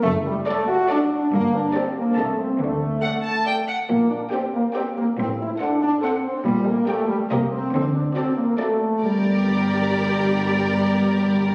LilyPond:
<<
  \new Staff \with { instrumentName = "Violin section" } { \time 3/4 \key g \minor \tempo 4 = 140 r4 d''4 d''4 | r4 d''4 a''4 | r4 fis''8 a''8 g''8 fis''8 | r4 g''4 g''4 |
r4 fis''4 fis''4 | r4 g''4 ees''4 | r4 d''4 d''4 | d''2.~ |
d''2. | }
  \new Staff \with { instrumentName = "Violin section" } { \time 3/4 \key g \minor r4 d''4 d''4 | r4 d''4 ees''4 | r4 d''4 d''4 | r4 d''4 d''4 |
r4 c''4 c''4 | r4 d''4 c''4 | r4 a'4 a'4 | bes'2.~ |
bes'2. | }
  \new Staff \with { instrumentName = "Viola section" } { \time 3/4 \key g \minor r4 a'4 a'4 | r4 g'4 a'4 | r4 a'4 a'4 | r4 g'4 g'4 |
r4 a'4 a'4 | r4 g'4 g'4 | r4 fis'4 fis'4 | g'2.~ |
g'2. | }
  \new Staff \with { instrumentName = "French horn section" } { \time 3/4 \key g \minor a8 g8 a8 fis'8 d'8 d'8 | bes8 d'8 c'8 bes8 a8 c'8 | a2~ a8 r8 | bes8 d'8 c'8 bes8 c'8 bes8 |
c'8 e'8 d'8 d'8 c'8 c'8 | g8 bes8 a8 g8 bes8 c'8 | c'8 d'8 c'8 bes8 a4 | g2.~ |
g2. | }
  \new Staff \with { instrumentName = "Cello section" } { \clef bass \time 3/4 \key g \minor fis,4 r2 | g,4 r4 c4 | d4 r2 | bes,4 r2 |
a,4 r2 | bes,4 r4 c4 | d4 r2 | g,2.~ |
g,2. | }
  \new Staff \with { instrumentName = "Double bass section" } { \clef bass \time 3/4 \key g \minor fis,,4 r2 | g,,4 r4 c,4 | d,4 r2 | bes,,4 r2 |
a,,4 r2 | bes,,4 r4 c,4 | d,4 r2 | g,,2.~ |
g,,2. | }
>>